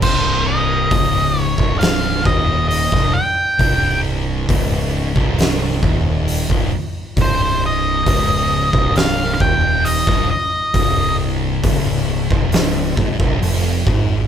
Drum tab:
CC |x---------------|----------------|----------------|----------------|
HH |----o---o---o---|o---o---o---o---|o---o---o---o---|o---o---o---o---|
SD |--------o----o--|--------o-------|--------o----o--|--------o-------|
BD |o---o--o--o--o--|o---o--o--o--o--|o---o--o--o--o--|o---o--o--oo--o-|